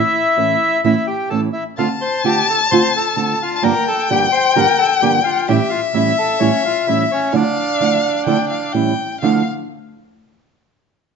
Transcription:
0.00 0.81 E4 medium
0.00 0.81 E5 loud
0.37 0.54 A2 medium
0.37 0.54 E3 medium
0.37 0.55 A3 medium
0.37 0.54 C#4 medium
0.37 0.55 E4 medium
0.84 0.93 A2 medium
0.84 0.93 E3 medium
0.84 0.93 A3 medium
0.84 0.93 C#4 medium
0.84 0.93 E4 loud
0.84 1.06 E4 medium
0.84 1.06 E5 loud
1.07 1.29 G4 medium
1.07 1.29 G5 medium
1.30 1.48 A2 medium
1.30 1.48 E3 medium
1.30 1.48 A3 medium
1.30 1.48 C#4 medium
1.30 1.48 E4 medium
1.30 1.41 A4 medium
1.30 1.41 A5 medium
1.53 1.64 E4 medium
1.53 1.64 E5 medium
1.77 1.87 D3 medium
1.77 1.87 A3 medium
1.77 1.87 C4 medium
1.77 1.89 F4 medium
1.77 1.87 F4 medium
1.77 1.89 F5 medium
1.77 3.52 A5 loud
2.01 2.23 C5 medium
2.01 2.23 C6 loud
2.24 2.41 D3 medium
2.24 2.41 A3 medium
2.24 2.41 C4 medium
2.24 2.42 F4 medium
2.24 2.47 G4 medium
2.24 2.46 G5 medium
2.50 2.60 A4 medium
2.50 2.60 A5 medium
2.71 2.80 D3 medium
2.71 2.80 A3 loud
2.71 2.80 C4 loud
2.71 2.81 F4 loud
2.71 2.93 C5 medium
2.71 2.93 C6 loud
2.96 3.16 A4 medium
2.96 3.15 A5 medium
3.16 3.33 D3 medium
3.16 3.34 A3 medium
3.16 3.34 C4 medium
3.16 3.34 F4 medium
3.16 3.39 A4 medium
3.16 3.41 A5 medium
3.42 3.63 F4 medium
3.42 3.63 F5 medium
3.56 3.65 A5 medium
3.62 3.72 G2 medium
3.62 3.72 D3 medium
3.62 3.72 F3 loud
3.62 3.72 A#3 loud
3.62 3.72 D4 loud
3.62 3.72 G4 loud
3.62 3.85 A#4 medium
3.62 5.49 G5 loud
3.62 3.85 A#5 loud
3.88 4.09 A4 medium
3.88 4.08 A5 loud
4.10 4.26 G2 medium
4.10 4.26 D3 medium
4.10 4.27 F3 medium
4.10 4.27 A#3 medium
4.10 4.27 D4 medium
4.10 4.27 G4 medium
4.10 4.21 G4 medium
4.10 4.21 G5 medium
4.32 4.54 C5 medium
4.32 4.53 C6 medium
4.56 4.64 G2 loud
4.56 4.65 D3 loud
4.56 4.65 F3 loud
4.56 4.65 A#3 medium
4.56 4.65 D4 loud
4.56 4.65 G4 loud
4.56 4.77 A#4 medium
4.56 4.79 A#5 loud
4.78 5.00 A4 medium
4.78 5.00 A5 medium
5.01 5.18 G2 medium
5.01 5.19 D3 medium
5.01 5.19 F3 medium
5.01 5.19 A#3 medium
5.01 5.19 D4 medium
5.01 5.12 G4 medium
5.01 5.19 G4 medium
5.01 5.12 G5 medium
5.24 5.47 F4 medium
5.24 5.46 F5 medium
5.48 5.57 A2 loud
5.48 5.57 E3 loud
5.48 5.57 G3 medium
5.48 5.57 C#4 loud
5.48 5.57 E4 loud
5.48 5.70 G4 medium
5.48 7.33 E5 loud
5.48 5.69 G5 loud
5.70 5.81 F4 medium
5.70 5.80 F5 medium
5.94 6.10 A2 medium
5.94 6.11 E3 medium
5.94 6.11 G3 medium
5.94 6.11 C#4 medium
5.94 6.11 E4 medium
5.94 6.16 E4 medium
5.94 6.18 E5 medium
6.18 6.40 A4 medium
6.18 6.39 A5 medium
6.39 6.49 A2 medium
6.39 6.49 E3 medium
6.39 6.49 G3 loud
6.39 6.49 C#4 loud
6.39 6.62 C#4 medium
6.39 6.49 E4 loud
6.39 6.64 C#5 medium
6.65 6.86 F4 medium
6.65 6.86 F5 medium
6.87 7.04 A2 medium
6.87 7.04 E3 medium
6.87 7.04 G3 medium
6.87 7.04 C#4 medium
6.87 7.09 E4 medium
6.87 7.04 E4 medium
6.87 7.11 E5 medium
7.12 7.33 C#4 medium
7.12 7.35 C#5 medium
7.32 7.42 D3 medium
7.32 7.42 F3 medium
7.32 7.42 A3 loud
7.32 7.42 D4 loud
7.32 7.42 E4 loud
7.32 8.26 F5 loud
7.36 8.72 D4 medium
7.36 8.72 D5 medium
7.80 7.97 D3 medium
7.80 7.97 F3 medium
7.80 7.97 A3 medium
7.80 7.97 D4 medium
7.80 7.97 E4 medium
8.26 8.36 D3 medium
8.26 8.36 F3 loud
8.26 8.36 A3 medium
8.26 8.36 D4 loud
8.26 8.37 E4 loud
8.26 8.49 G5 loud
8.50 8.73 F5 medium
8.72 8.92 A2 medium
8.72 8.92 E3 medium
8.72 8.92 G3 medium
8.72 8.92 C#4 medium
8.72 8.92 E4 medium
8.72 9.21 G5 medium
9.21 9.41 D3 medium
9.21 9.41 F3 medium
9.21 9.41 A3 loud
9.21 9.42 D4 loud
9.21 9.42 E4 medium
9.21 9.44 F5 medium
9.21 9.45 F5 medium

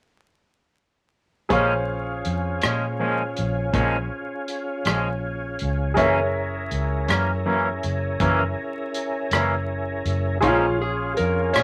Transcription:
1.49 2.21 A#1 medium
1.49 1.72 A#2 medium
1.49 1.73 F3 medium
1.49 1.73 G#3 medium
1.49 5.93 C#4 medium
1.49 1.73 C#4 medium
1.49 5.93 F4 medium
1.49 5.92 G#4 soft
1.49 5.93 G#4 medium
1.49 5.92 C5 soft
1.49 5.93 C#5 soft
1.49 5.93 F5 medium
1.49 kick medium
1.49 closed hi-hat medium
2.25 2.59 F2 medium
2.25 closed hi-hat medium
2.62 3.33 A#2 medium
2.62 2.85 F3 soft
2.62 2.85 G#3 soft
2.62 2.85 C#4 soft
2.62 cross-stick medium
2.62 closed hi-hat medium
3.00 3.21 A#2 soft
3.00 3.22 F3 soft
3.00 3.22 G#3 medium
3.00 3.22 C#4 medium
3.37 3.71 A#1 medium
3.37 closed hi-hat medium
3.73 4.08 A#1 medium
3.73 3.95 A#2 medium
3.73 3.96 F3 medium
3.73 3.96 G#3 medium
3.73 3.96 C#4 medium
3.73 kick medium
3.73 closed hi-hat medium
4.48 closed hi-hat medium
4.85 5.55 A#1 medium
4.85 5.08 F3 soft
4.85 5.08 G#3 soft
4.85 5.08 C#4 medium
4.85 cross-stick medium
4.85 closed hi-hat medium
5.59 5.95 C#2 medium
5.59 closed hi-hat soft
5.94 6.67 F#1 medium
5.94 6.19 F#2 medium
5.94 6.19 E3 medium
5.94 6.19 A#3 medium
5.94 10.38 C#4 medium
5.94 6.19 C#4 medium
5.94 10.38 E4 medium
5.94 10.37 G#4 medium
5.94 10.38 G#4 medium
5.94 10.38 A#4 soft
5.94 10.38 A#4 medium
5.94 10.38 C#5 soft
5.94 10.39 E5 medium
5.94 kick medium
5.94 closed hi-hat medium
6.71 7.05 C#2 medium
6.71 closed hi-hat soft
7.08 7.79 F#2 medium
7.08 7.31 E3 soft
7.08 7.31 A#3 soft
7.08 7.30 C#4 soft
7.08 cross-stick medium
7.08 closed hi-hat medium
7.46 7.68 F#2 soft
7.46 7.68 E3 soft
7.46 7.68 A#3 medium
7.46 7.68 C#4 medium
7.83 8.17 F#1 medium
7.83 closed hi-hat soft
8.20 8.54 F#1 medium
8.20 8.42 F#2 medium
8.20 8.42 E3 medium
8.20 8.43 A#3 medium
8.20 8.43 C#4 medium
8.20 kick medium
8.20 closed hi-hat medium
8.94 closed hi-hat medium
9.31 10.01 F#1 medium
9.31 9.55 E3 soft
9.31 9.54 A#3 soft
9.31 9.54 C#4 soft
9.31 cross-stick medium
9.31 closed hi-hat medium
10.05 10.39 F#1 medium
10.05 closed hi-hat soft
10.41 11.13 A#1 medium
10.41 10.65 A#2 medium
10.41 10.65 F3 medium
10.41 10.65 G#3 medium
10.41 11.63 C#4 medium
10.41 10.65 C#4 medium
10.41 10.79 F4 medium
10.41 11.63 F4 medium
10.41 11.63 G#4 medium
10.41 11.63 C#5 soft
10.41 11.63 F5 medium
10.41 11.63 C6 soft
10.41 kick medium
10.41 closed hi-hat medium
10.82 11.17 G#4 medium
11.17 11.52 F2 medium
11.17 11.53 A#4 medium
11.17 closed hi-hat soft
11.53 11.63 A#2 medium
11.53 11.63 F3 soft
11.53 11.63 G#3 soft
11.53 11.63 C#4 soft
11.53 11.63 C#5 medium
11.53 cross-stick loud
11.53 closed hi-hat medium

